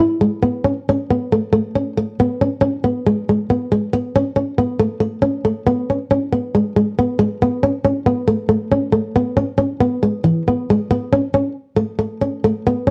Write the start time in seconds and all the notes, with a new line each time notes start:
0.00 E4
0.21 G#3
0.43 B3
0.64 C#4
0.89 C#4
1.10 B3
1.32 A3
1.53 A3
1.75 C#4
1.97 A3
2.20 B3
2.41 C#4
2.61 C#4
2.84 B3
3.07 G#3
3.29 G#3
3.50 B3
3.72 G#3
3.93 B3
4.16 C#4
4.36 C#4
4.58 B3
4.80 A3
5.00 A3
5.22 C#4
5.45 A3
5.67 B3
5.90 C#4
6.11 C#4
6.33 B3
6.55 G#3
6.76 G#3
6.99 B3
7.19 G#3
7.42 B3
7.63 C#4
7.85 C#4
8.06 B3
8.28 A3
8.49 A3
8.72 C#4
8.92 A3
9.16 B3
9.37 C#4
9.58 C#4
9.80 B3
10.03 G#3
10.24 E3
10.48 B3
10.70 G#3
10.91 B3
11.13 C#4
11.34 C#4
11.77 A3
11.99 A3
12.21 C#4
12.44 A3
12.67 B3
12.87 C#4